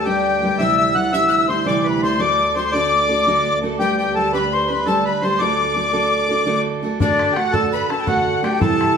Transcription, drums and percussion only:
7.00 bodhran medium
7.19 bodhran medium
7.36 bodhran medium
7.54 bodhran medium
7.63 bodhran soft
7.73 bodhran soft
7.90 bodhran medium
8.07 bodhran medium
8.17 bodhran soft
8.27 bodhran soft
8.44 bodhran medium
8.62 bodhran medium
8.81 bodhran medium

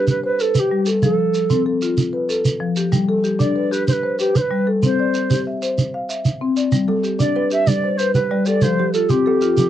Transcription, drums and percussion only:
0.07 shekere medium
0.39 shekere medium
0.55 shekere medium
0.86 shekere medium
1.02 shekere medium
1.34 shekere soft
1.50 shekere medium
1.82 shekere medium
1.97 shekere medium
2.29 shekere medium
2.45 shekere medium
2.76 shekere medium
2.92 shekere medium
3.24 shekere soft
3.40 shekere medium
3.73 shekere medium
3.88 shekere medium
4.19 shekere medium
4.35 shekere medium
4.83 shekere medium
5.14 shekere medium
5.30 shekere medium
5.62 shekere medium
5.78 shekere medium
6.10 shekere medium
6.25 shekere medium
6.57 shekere medium
6.72 shekere medium
7.04 shekere soft
7.20 shekere medium
7.51 shekere medium
7.67 shekere medium
7.99 shekere medium
8.14 shekere medium
8.46 shekere medium
8.61 shekere medium
8.94 shekere medium
9.09 shekere medium
9.41 shekere medium
9.57 shekere medium

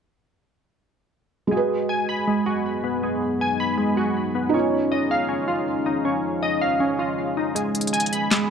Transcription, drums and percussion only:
7.56 closed hi-hat medium
7.75 closed hi-hat medium
7.81 closed hi-hat medium
7.87 closed hi-hat medium
7.94 closed hi-hat medium
8.00 closed hi-hat medium
8.06 closed hi-hat medium
8.13 closed hi-hat medium
8.31 snare loud
8.31 clap medium
8.31 closed hi-hat medium

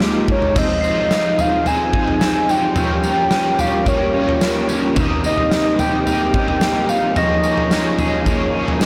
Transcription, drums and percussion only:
0.00 snare loud
0.28 kick medium
0.42 floor tom medium
0.56 kick loud
0.56 floor tom loud
0.56 crash medium
0.56 tambourine medium
0.84 tambourine medium
1.11 snare loud
1.11 tambourine medium
1.39 floor tom medium
1.39 tambourine medium
1.66 floor tom medium
1.66 tambourine medium
1.93 kick medium
2.08 floor tom medium
2.21 snare loud
2.21 tambourine medium
2.49 tambourine medium
2.76 floor tom loud
2.76 tambourine medium
3.03 tambourine medium
3.31 snare loud
3.31 tambourine medium
3.59 floor tom medium
3.59 tambourine medium
3.86 kick medium
3.86 floor tom medium
3.86 tambourine medium
4.29 floor tom medium
4.41 snare loud
4.41 tambourine medium
4.69 tambourine medium
4.96 kick loud
4.96 floor tom loud
4.96 tambourine medium
5.24 tambourine medium
5.38 floor tom medium
5.52 snare loud
5.52 tambourine medium
5.79 floor tom medium
5.79 tambourine medium
6.07 floor tom medium
6.07 tambourine medium
6.34 kick loud
6.48 floor tom medium
6.61 snare loud
6.61 tambourine medium
6.89 tambourine medium
7.16 floor tom loud
7.16 tambourine medium
7.43 tambourine medium
7.57 floor tom medium
7.71 snare loud
7.71 tambourine medium
7.98 floor tom medium
7.98 tambourine medium
8.26 kick medium
8.26 floor tom medium
8.26 tambourine medium
8.68 floor tom medium
8.81 snare loud
8.81 tambourine medium

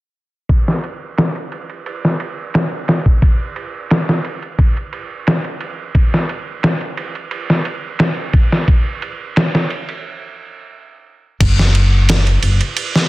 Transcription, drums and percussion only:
0.49 kick medium
0.49 ride medium
0.68 snare soft
0.84 ride medium
1.18 snare loud
1.18 ride medium
1.36 ride soft
1.52 ride medium
1.70 ride soft
1.86 ride medium
2.05 snare soft
2.20 ride medium
2.54 snare loud
2.54 ride medium
2.88 snare medium
2.88 ride medium
3.06 kick medium
3.22 kick medium
3.22 ride medium
3.56 ride medium
3.91 snare loud
3.91 ride medium
4.09 snare soft
4.25 ride medium
4.43 ride soft
4.59 kick loud
4.59 ride medium
4.77 ride soft
4.93 ride medium
5.27 snare medium
5.27 ride medium
5.44 ride soft
5.61 ride medium
5.95 kick loud
5.95 ride medium
6.14 snare soft
6.29 ride medium
6.63 snare loud
6.63 ride medium
6.81 ride soft
6.97 ride medium
7.15 ride soft
7.31 ride medium
7.50 snare soft
7.65 ride medium
7.99 snare loud
7.99 ride medium
8.33 kick medium
8.33 ride medium
8.52 snare soft
8.68 kick loud
8.68 ride medium
9.02 ride medium
9.36 snare loud
9.36 ride medium
9.55 snare medium
9.70 ride medium
9.89 ride soft
11.40 kick loud
11.40 crash medium
11.40 ride medium
11.59 snare soft
11.75 ride medium
12.09 snare loud
12.09 ride medium
12.27 ride soft
12.43 ride medium
12.61 ride soft
12.77 ride medium
12.96 snare soft

